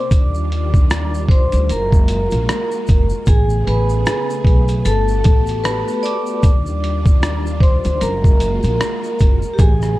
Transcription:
Already playing: C5 D5 C6 D6
0.11 D#2 D#3 G3 D4 F4, kick, closed hi-hat, shaker
0.34 shaker
0.52 closed hi-hat
0.74 kick, shaker
0.90 cross-stick, closed hi-hat, shaker
1.14 shaker
1.29 C5 C6, kick, closed hi-hat
1.52 D2, closed hi-hat, shaker
1.69 F#1 G#3 A#3 F4 F#4 A#4 A#5, closed hi-hat, shaker
1.92 kick, shaker
2.08 closed hi-hat, shaker
2.31 A#1, closed hi-hat, shaker
2.49 cross-stick, closed hi-hat, shaker
2.72 shaker
2.87 F#1, kick, closed hi-hat, shaker
3.10 shaker
3.26 A1 C#3 A3 B3 G#4 G#5, kick, closed hi-hat, shaker
3.50 shaker
3.67 A1 B4 B5, closed hi-hat
3.89 shaker
4.06 cross-stick, closed hi-hat, shaker
4.30 shaker
4.45 B1, kick, closed hi-hat
4.68 closed hi-hat, shaker
4.85 G1 B3 F#4 G4 A4 A5, closed hi-hat, shaker
5.08 shaker
5.24 A1, kick, closed hi-hat, shaker
5.47 closed hi-hat, shaker
5.64 B4 B5, cross-stick, closed hi-hat, shaker
5.88 shaker
6.03 D5 D6, closed hi-hat, shaker
6.26 shaker
6.43 D#2 D#3 G3 D4 F4, kick, closed hi-hat, shaker
6.66 shaker
6.84 closed hi-hat
7.06 kick, shaker
7.23 cross-stick, closed hi-hat, shaker
7.46 shaker
7.60 C5 C6, kick, closed hi-hat
7.84 D2, closed hi-hat, shaker
8.01 F#1 G#3 A#3 F4 F#4 A#4 A#5, closed hi-hat, shaker
8.24 kick, shaker
8.40 closed hi-hat, shaker
8.63 A#1, closed hi-hat, shaker
8.81 cross-stick, closed hi-hat, shaker
9.04 shaker
9.19 F#1, kick, closed hi-hat, shaker
9.42 shaker
9.54 G4
9.59 A1 C#3 A3 B3 G#4 G#5, kick, closed hi-hat, shaker
9.82 cross-stick, shaker

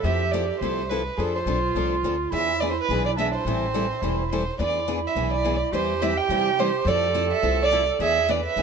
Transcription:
0.03 F2 F3 C4 E4 G4 A4 E5
0.32 F3 C4 E4 A4 D5
0.61 C2 F3 C4 E4 A4 C5
0.89 F3 C4 E4 A4 B4
1.17 F2 F3 C4 D4 F4 G#4 A4
1.36 C5
1.46 B1 F3 C4 D4 A4
1.75 C2 F3 C4 D4 A4
2.03 D2 F3 C4 D4 A4
2.30 E2 E3 B3 D4 E4 G#4 E5
2.60 E3 B3 D4 G#4 D5
2.71 C5
2.81 B4
2.89 B1 E3 B3 D4 G#4
3.06 D5
3.17 E3 B3 D4 G#4 E5
3.35 C5
3.45 A1 E3 G3 C4 E4 A4
3.74 E3 G3 C4 E4 A4
4.02 E1 E3 G3 C4 E4 A4
4.32 E3 G3 C4 E4 A4 C5
4.59 E2 E3 B3 D4 E4 G#4 D5
4.88 E3 B3 D4 G#4
5.07 E5
5.16 B1 E3 B3 D4 G#4
5.34 D5
5.45 E3 B3 D4 G#4
5.72 E2 E3 G3 C4 E4 G4 B4 C5
6.02 E3 G3 C4 E4 B4 E5
6.18 G5
6.29 C3 E3 G3 C4 E4 B4
6.59 E3 G3 C4 E4 B4 C5
6.85 F2 F3 C4 E4 A4 D5
7.14 F3 C4 E4 A4
7.32 E5
7.43 C2 F3 C4 E4 A4
7.63 D5
7.72 F3 C4 E4 A4
7.99 E2 E3 B3 D4 G#4 E5
8.29 E3 B3 D4 G#4 B4 D5
8.46 E5
8.56 B1 E3 B3 D4 G#4

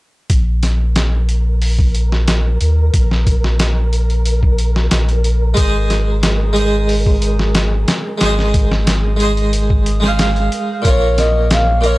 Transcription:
0.30 A#1 A#4, kick, closed hi-hat
0.63 snare, closed hi-hat
0.96 snare, closed hi-hat
1.29 closed hi-hat
1.62 open hi-hat
1.79 kick
1.95 closed hi-hat
2.12 snare
2.28 snare, closed hi-hat
2.61 D#2, closed hi-hat
2.94 A#1, kick, closed hi-hat
3.11 snare
3.27 kick, closed hi-hat
3.44 snare
3.59 snare, closed hi-hat
3.93 closed hi-hat
4.10 closed hi-hat
4.25 closed hi-hat
4.43 kick
4.58 closed hi-hat
4.76 snare
4.91 A#1, snare, closed hi-hat
5.09 closed hi-hat
5.24 closed hi-hat
5.54 G#1 G#3 G#4, kick, closed hi-hat
5.59 C5 D#5
5.90 snare, closed hi-hat
6.23 snare, closed hi-hat
6.53 G#3 G#4, closed hi-hat
6.58 C5 D#5
6.89 open hi-hat
7.06 kick
7.22 closed hi-hat
7.39 snare
7.55 snare, closed hi-hat
7.88 snare, closed hi-hat
8.18 G#3 G#4, snare, closed hi-hat
8.22 G#1 C5 D#5
8.39 snare
8.54 kick, closed hi-hat
8.71 snare
8.87 snare, closed hi-hat
9.17 G#3 G#4, closed hi-hat
9.22 C5 D#5
9.37 closed hi-hat
9.53 closed hi-hat
9.70 kick
9.86 closed hi-hat
10.00 G#3 G#4, snare
10.05 C5 F5
10.19 snare, closed hi-hat
10.36 closed hi-hat
10.52 closed hi-hat
10.82 A#1 A#2 A#3, kick, closed hi-hat
10.86 F4 C#5
11.18 D#5, snare, closed hi-hat
11.51 F5, snare, closed hi-hat
11.81 A#2 A#3, closed hi-hat
11.85 F4 C#5

